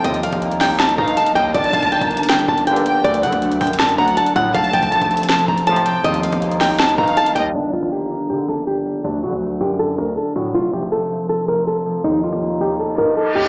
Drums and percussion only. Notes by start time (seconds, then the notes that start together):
0.04 closed hi-hat
0.14 closed hi-hat
0.23 closed hi-hat
0.32 kick, closed hi-hat
0.42 closed hi-hat
0.51 closed hi-hat
0.61 kick, snare, open hi-hat
0.79 snare, closed hi-hat
0.89 closed hi-hat
0.98 kick
1.08 closed hi-hat
1.17 closed hi-hat
1.26 closed hi-hat
1.36 kick, closed hi-hat
1.54 kick, closed hi-hat
1.64 closed hi-hat
1.73 kick, closed hi-hat
1.82 kick, closed hi-hat
1.92 closed hi-hat
2.01 kick, closed hi-hat
2.11 closed hi-hat
2.17 closed hi-hat
2.23 closed hi-hat
2.29 snare, closed hi-hat
2.39 closed hi-hat
2.48 kick
2.58 closed hi-hat
2.67 closed hi-hat
2.76 closed hi-hat
2.86 closed hi-hat
3.05 closed hi-hat
3.14 closed hi-hat
3.23 closed hi-hat
3.32 kick, closed hi-hat
3.42 closed hi-hat
3.51 closed hi-hat
3.61 kick, closed hi-hat, open hi-hat
3.67 closed hi-hat
3.73 closed hi-hat
3.79 snare, closed hi-hat
3.89 closed hi-hat
3.98 kick
4.08 closed hi-hat
4.17 closed hi-hat
4.26 closed hi-hat
4.36 kick, closed hi-hat
4.55 kick, closed hi-hat
4.64 closed hi-hat
4.73 kick, closed hi-hat
4.82 kick, closed hi-hat
4.92 closed hi-hat
5.01 kick, closed hi-hat
5.11 closed hi-hat
5.17 closed hi-hat
5.23 closed hi-hat
5.29 snare, closed hi-hat
5.39 closed hi-hat
5.48 kick
5.58 closed hi-hat
5.67 closed hi-hat
5.76 closed hi-hat
5.86 closed hi-hat
6.04 closed hi-hat
6.14 closed hi-hat
6.23 closed hi-hat
6.32 kick, closed hi-hat
6.42 closed hi-hat
6.51 closed hi-hat
6.61 kick, snare, open hi-hat
6.79 snare, closed hi-hat
6.89 closed hi-hat
6.98 kick
7.07 closed hi-hat
7.17 closed hi-hat
7.26 closed hi-hat
7.36 kick, closed hi-hat